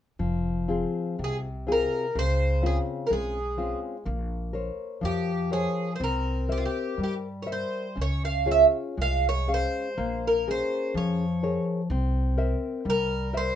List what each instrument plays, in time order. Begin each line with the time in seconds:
0.19 upright bass F1, nylon-string guitar F3
0.68 nylon-string guitar C4 F4 G#4
1.19 upright bass C2, nylon-string guitar C3
1.24 twelve-string acoustic guitar G#4
1.67 nylon-string guitar C4 F4 G#4
1.72 twelve-string acoustic guitar A#4
2.15 upright bass C#2, nylon-string guitar C#3, twelve-string acoustic guitar C5
2.62 nylon-string guitar C4 C#4 F4, twelve-string acoustic guitar G#4
3.07 nylon-string guitar G#3, twelve-string acoustic guitar A#4
3.11 upright bass B1, twelve-string acoustic guitar G#4
3.57 nylon-string guitar C4 C#4 F4
4.05 upright bass A#1, nylon-string guitar A#3
4.53 nylon-string guitar A#4 C5 C#5
5.01 upright bass F2, nylon-string guitar F3, twelve-string acoustic guitar G4
5.51 twelve-string acoustic guitar G#4, nylon-string guitar A#4 C5 C#5
5.96 twelve-string acoustic guitar C5
6.00 upright bass C2, nylon-string guitar C4, twelve-string acoustic guitar A#4
6.49 twelve-string acoustic guitar G4, nylon-string guitar A#4 C5 E5
6.58 twelve-string acoustic guitar F4
6.66 twelve-string acoustic guitar G4
6.98 upright bass G2, nylon-string guitar G3
7.03 twelve-string acoustic guitar G4
7.42 nylon-string guitar A#4 C5, twelve-string acoustic guitar C#5
7.47 nylon-string guitar E5
7.52 twelve-string acoustic guitar C5
7.96 upright bass C#2, nylon-string guitar C#4
8.02 twelve-string acoustic guitar C#5
8.25 twelve-string acoustic guitar F5
8.46 nylon-string guitar F4 G#4 C#5
8.51 twelve-string acoustic guitar E5
8.97 upright bass C2, nylon-string guitar G#3
9.02 twelve-string acoustic guitar F5
9.29 twelve-string acoustic guitar C#5
9.48 nylon-string guitar C#4 G#4 F5
9.54 twelve-string acoustic guitar C5
9.98 upright bass A#1, nylon-string guitar A#3
10.27 twelve-string acoustic guitar A#4
10.48 nylon-string guitar C#4 G#4 A#4, twelve-string acoustic guitar C5
10.94 upright bass F2, nylon-string guitar F3, twelve-string acoustic guitar C#5
11.43 nylon-string guitar G#4 A#4 C#5
11.90 upright bass C2, nylon-string guitar C4
12.38 nylon-string guitar A#4 C5 E5
12.85 upright bass C2, nylon-string guitar G3
12.90 twelve-string acoustic guitar A#4
13.33 nylon-string guitar A#4 C5 E5, twelve-string acoustic guitar C5